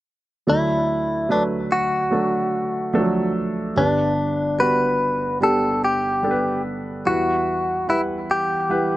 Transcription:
0.47 D2 D3 F#3 A3 D4 E4 A4
1.29 F#3 A3 D4 B4
1.72 F#4
2.11 F#3 A3 D4 A4
2.93 F3 A3 D4 A4
2.99 F#3
3.76 G1 G2 G3 B3 D4 B4
4.58 G3 B3 D4 F#4 B4
5.40 G3 B3 D4 G4 A4
5.85 G4
6.23 G3 B3 D4 A4
6.31 B4
7.05 E2 E3 G3 E4 F#4 B4
7.88 G3 E4 B4 F#5
8.31 G4
8.69 G3 E4 B4 F#5

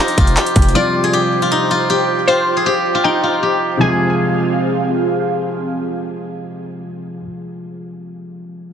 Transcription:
Already playing: C3 F3 G3 F4 G4 C5 G5
0.00 D#4
0.08 closed hi-hat
0.18 F1 F4, kick, closed hi-hat
0.27 closed hi-hat
0.37 G4, clap, closed hi-hat
0.46 closed hi-hat
0.56 F1, kick, closed hi-hat
0.62 closed hi-hat
0.69 closed hi-hat
0.74 C3 F3 G3 F4 G4 C5 D5 G5
1.04 G#4
1.13 G4
1.42 F4
1.52 D#4
1.71 F4
1.90 G4
2.28 F4 C5
2.57 G#4
2.66 G4
2.95 F4
3.04 D#4 G5
3.23 F4
3.43 G4
3.77 C3 F3 C4 F4 G#4 F5 G#5
3.82 G#3 F4

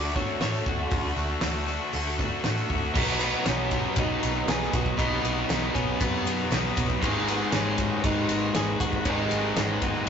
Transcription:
Already playing: D2 D3 A3 D4 F#4 D5
0.13 A3 D4 F#4 C#5, kick, tambourine
0.39 A2 D3 A3 D4 F#4 C#5, snare, open hi-hat, tambourine
0.54 tambourine
0.65 D2 A3 D4 F#4, kick
0.69 F#4
0.79 tambourine
0.90 D2 D3 A3 D4 F#4, kick, open hi-hat, tambourine
1.05 tambourine
1.16 D2 A3 D4 F#4, tambourine
1.30 tambourine
1.41 D2 D3 A3 D4 F#4, snare, open hi-hat, tambourine
1.66 A3 D4 F#4, tambourine
1.93 D2 D3 A3 D4 F#4, open hi-hat, tambourine
2.07 tambourine
2.18 A3 D4 F#4, kick, tambourine
2.43 A2 D3 A3 D4 F#4, snare, open hi-hat, tambourine
2.58 tambourine
2.69 D2 A3 D4 F#4, kick, tambourine
2.83 tambourine
2.93 B1 B2 D#3 F#3 B3 D#4 B4, kick, crash
3.19 F#3 B3 D#4 B4, ride, tambourine
3.24 B3
3.44 B1 F#3 B3 C#4 D#4 B4, snare, ride, tambourine
3.71 kick, ride, tambourine
3.96 B1 B2 D#3 F#3 B3 D#4 B4, kick, ride, tambourine
4.23 B1 F#3 B3 D#4 B4, ride, tambourine
4.47 B1 F#3 B3 D#4 G#4 B4, snare, ride, tambourine
4.62 snare
4.72 B1 F#3 B3 D#4 F#4 B4, kick, ride, tambourine
4.86 kick
4.98 B1 B2 D#3 F#3 B3 D#4 B4, kick, ride
5.24 B1 F#3 B3 D#4 B4, ride, tambourine
5.49 B1 F#3 B3 D#4 B4, snare, ride, tambourine
5.74 B1 C#4, kick, ride, tambourine
6.00 F#2 B2 D#3 F#3 B3 D#4 B4, kick, ride, tambourine
6.25 F#2 F#3 B3 D#4 B4, ride, tambourine
6.51 B1 F#3 B3 D#4 B4, snare, ride, tambourine
6.65 snare
6.75 B1 F#3 B3 D#4 B4, kick, ride, tambourine
6.90 kick
7.02 G#1 G#2 D#3 G#3 B3 D#4 B4, kick, ride
7.27 G#3 B3 D#4 B4, ride, tambourine
7.31 B3
7.52 G#1 G#3 B3 C#4 D#4 B4, snare, ride, tambourine
7.78 kick, ride, tambourine
8.03 G#1 G#2 D#3 G#3 B3 D#4 B4, kick, ride, tambourine
8.28 G#1 G#3 B3 D#4 B4, ride, tambourine
8.54 G#1 G#3 B3 D#4 G#4 B4, snare, ride, tambourine
8.79 G#1 G#3 B3 D#4 F#4 B4, kick, ride, tambourine
8.93 kick
9.04 G#1 G#2 D#3 G#3 B3 D#4 B4, kick, ride
9.31 G#1 G#3 B3 D#4 B4, ride, tambourine
9.55 G#1 G#3 B3 D#4 B4, snare, ride, tambourine
9.63 C#4
9.82 G#1 B3, kick, ride, tambourine
10.05 G#2 D#3

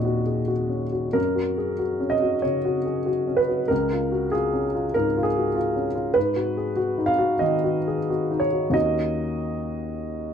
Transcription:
Already playing: D#2 A#2 C#4 F#4 G#4 D#5
0.05 F#4
0.26 G#4
0.48 F#4
0.69 C#4
0.92 F#4
1.13 F#2 A#4
1.35 F#4
1.58 G#4
1.79 F#4
2.00 C#4
2.10 D#5
2.22 F#4
2.42 C#3 C#5
2.65 F#4
2.85 G#4
3.06 F#4
3.27 C#4
3.37 B4
3.49 F#4
3.68 C#2 A#4
3.93 F4
4.12 F#4
4.32 F4 G#4
4.53 C#4
4.75 F4
4.94 G#2 A#4
5.17 F4
5.23 G#4
5.37 F#4
5.55 F4
5.76 C#4
5.95 F4
6.14 G#2 B4
6.36 F#4
6.57 G#4
6.76 F#4
6.98 D#4
7.06 F5
7.19 F#4
7.39 D#3 D#5
7.64 F#4
7.87 G#4
8.10 F#4
8.31 D#4
8.40 C#5
8.53 F#4
8.70 D#2 A#3 C#4 F#4 D#5

